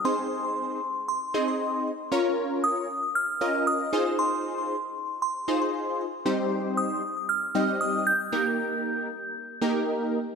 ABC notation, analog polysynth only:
X:1
M:4/4
L:1/8
Q:1/4=116
K:Ab
V:1 name="Analog polysynth"
[CEAc]3 z2 [CEAe]2 z | [DFBd]3 z2 [DFBe]2 [EFAc]- | [EFAc]2 z3 [EFAc]2 z | [G,CEGc]3 z2 [G,CEGe]2 z |
[B,EGB]3 z2 [B,EGB]2 z |]